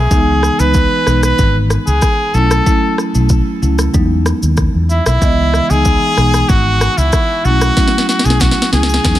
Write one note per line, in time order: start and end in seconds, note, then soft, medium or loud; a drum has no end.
0.00 0.61 G#4 loud
0.11 0.48 C#2 loud
0.11 0.56 E3 medium
0.11 0.56 G#3 medium
0.11 0.56 B3 medium
0.11 0.56 D#4 loud
0.11 kick loud
0.11 shaker medium
0.43 cross-stick medium
0.43 shaker soft
0.59 0.84 C#2 medium
0.59 0.83 E3 medium
0.59 0.83 G#3 medium
0.59 0.83 B3 medium
0.59 0.83 D#4 medium
0.59 1.23 B4 loud
0.59 shaker medium
0.74 kick medium
0.74 shaker medium
1.06 1.31 B1 medium
1.06 1.30 E3 medium
1.06 1.31 G#3 medium
1.06 1.31 B3 medium
1.06 1.31 D#4 medium
1.06 cross-stick medium
1.06 shaker medium
1.23 1.58 B4 loud
1.23 cross-stick medium
1.23 shaker medium
1.38 1.76 G#1 medium
1.38 kick loud
1.38 shaker medium
1.70 cross-stick medium
1.70 shaker medium
1.87 1.99 C#2 medium
1.87 2.36 G#4 loud
1.87 shaker medium
2.02 kick medium
2.02 cross-stick medium
2.02 shaker medium
2.34 2.59 B1 medium
2.34 2.64 F#3 medium
2.34 2.64 A3 medium
2.34 2.64 C#4 medium
2.34 2.64 E4 loud
2.34 2.98 A4 medium
2.34 shaker soft
2.51 cross-stick loud
2.51 shaker medium
2.66 3.11 F#3 medium
2.66 3.11 A3 medium
2.66 3.11 C#4 medium
2.66 3.11 E4 loud
2.66 kick loud
2.66 shaker medium
2.98 cross-stick medium
2.98 shaker soft
3.15 3.39 B1 loud
3.15 3.38 F#3 medium
3.15 3.38 A3 medium
3.15 3.38 C#4 medium
3.15 3.38 E4 medium
3.15 shaker medium
3.29 kick medium
3.29 shaker medium
3.62 3.87 C#2 medium
3.62 3.86 F#3 medium
3.62 3.86 A3 medium
3.62 3.86 C#4 medium
3.62 3.86 E4 medium
3.62 shaker soft
3.79 cross-stick medium
3.79 shaker medium
3.94 4.31 E2 loud
3.94 5.12 F#3 medium
3.94 5.12 G#3 medium
3.94 5.12 B3 medium
3.94 5.12 D#4 loud
3.94 kick loud
3.94 shaker medium
4.26 cross-stick medium
4.26 shaker medium
4.43 4.67 D#2 medium
4.43 shaker medium
4.57 kick medium
4.57 cross-stick medium
4.57 shaker medium
4.75 4.99 E2 medium
4.90 5.05 E4 medium
4.90 shaker soft
5.06 5.18 B1 medium
5.06 5.72 E4 loud
5.06 cross-stick loud
5.06 shaker medium
5.22 5.59 C#2 loud
5.22 5.66 E3 medium
5.22 5.66 G#3 medium
5.22 5.66 B3 medium
5.22 5.66 D#5 loud
5.22 kick loud
5.22 shaker medium
5.54 cross-stick medium
5.54 shaker soft
5.70 5.95 C#2 loud
5.70 5.93 E3 medium
5.70 5.93 G#3 medium
5.70 5.93 B3 medium
5.70 5.94 D#4 medium
5.70 6.51 G#4 loud
5.70 shaker medium
5.85 kick medium
5.85 shaker medium
6.17 6.42 B1 medium
6.17 6.41 E3 medium
6.17 6.41 G#3 medium
6.17 6.41 B3 medium
6.17 6.42 D#4 medium
6.17 cross-stick medium
6.17 shaker medium
6.34 cross-stick medium
6.34 shaker medium
6.49 6.87 G#1 medium
6.49 6.99 F#4 loud
6.49 kick loud
6.49 shaker medium
6.81 cross-stick medium
6.81 shaker medium
6.98 7.10 C#2 medium
6.98 7.47 E4 medium
6.98 shaker medium
7.12 kick medium
7.12 cross-stick medium
7.12 shaker medium
7.45 7.69 B1 loud
7.45 7.74 F#3 medium
7.45 7.74 A3 medium
7.45 7.75 C#4 medium
7.45 7.75 E4 loud
7.45 8.08 F#4 loud
7.45 shaker soft
7.61 cross-stick loud
7.61 shaker medium
7.77 8.21 F#3 medium
7.77 8.21 A3 medium
7.77 8.22 C#4 medium
7.77 8.22 E4 loud
7.77 kick loud
7.77 snare medium
7.77 shaker medium
7.88 snare medium
7.98 snare medium
8.09 8.27 F#4 medium
8.09 snare medium
8.09 shaker soft
8.19 snare medium
8.25 8.50 B1 medium
8.25 8.48 F#3 medium
8.25 8.48 A3 medium
8.25 8.49 C#4 medium
8.25 8.49 E4 medium
8.25 8.42 G#4 medium
8.25 shaker medium
8.30 snare medium
8.40 8.72 F#4 medium
8.40 kick medium
8.40 snare medium
8.40 shaker medium
8.51 snare medium
8.62 snare medium
8.72 8.97 C#2 medium
8.72 8.96 F#3 medium
8.72 8.96 A3 medium
8.72 8.97 C#4 medium
8.72 8.97 E4 medium
8.72 9.19 G#4 medium
8.72 snare medium
8.72 shaker soft
8.83 snare medium
8.89 shaker medium
8.94 snare medium
9.04 9.18 E2 loud
9.04 9.19 F#3 medium
9.04 9.19 G#3 medium
9.04 9.19 B3 medium
9.04 9.19 D#4 loud
9.04 kick loud
9.04 snare medium
9.04 shaker medium
9.15 snare medium